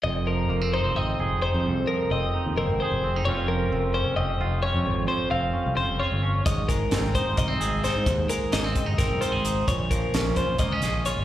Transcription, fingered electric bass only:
X:1
M:7/8
L:1/16
Q:1/4=131
K:Fm
V:1 name="Fingered electric bass" clef=bass
F,,,4 F,,,3 F,,, A,,,2 F,,,3 F,, | C,,2 z2 F,,,2 z E,, F,,, A,,, z F,,,3 | F,,,4 F,,,3 F,,, F,,,2 F,,,3 F,, | A,,,2 z2 F,,,2 z C,, F,,, F,,, z G,,,3 |
A,,,4 A,,,3 A,,, C,,2 A,,,3 A,, | E,,2 z2 A,,,2 z G,,, A,,, C,, z A,,,3 | B,,,4 B,,,3 B,,, D,,2 B,,,3 G,,, |]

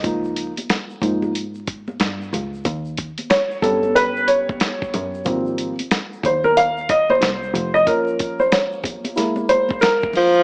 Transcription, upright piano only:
X:1
M:4/4
L:1/16
Q:"Swing 16ths" 1/4=92
K:Dblyd
V:1 name="Upright piano"
z16 | z4 d2 =A2 =B2 d6 | z6 c B f2 e c4 e | B3 c d2 z4 c2 B4 |]
V:2 name="Upright piano"
[F,B,E]2 z4 [F,B,E]2 z8 | z6 [=B,DG]8- [B,DG]2 | [F,G,B,C]2 z12 z2 | [F,B,D]8 [^G,B,=E]8 |]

